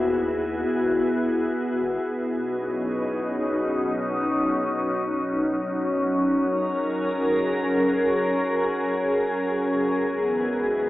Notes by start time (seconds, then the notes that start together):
Already playing: D#2 B3 E4 F#4 G#4
0.83 G#1
1.82 G#1
2.06 B2
2.25 D#4
2.32 F#3
2.49 C#4
6.40 A#4
6.52 G#4
9.93 G#2
10.02 B3
10.07 E3
10.30 F#4